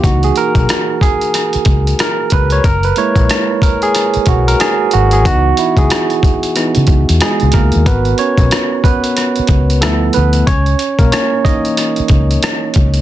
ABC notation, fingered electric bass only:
X:1
M:4/4
L:1/16
Q:"Swing 16ths" 1/4=92
K:C#dor
V:1 name="Fingered electric bass" clef=bass
C,,2 z B,,, z6 C,,2 z2 C,,2 | F,,,2 z A,,, z6 B,,,2 z2 G,,,2 | C,,2 z C,, z4 z C, C,, E,, z C,, C,, D,, | G,,,2 z B,,, z6 C,,2 =D,,2 D,,2 |
C,,2 z B,,, z6 C,,2 z2 C,,2 |]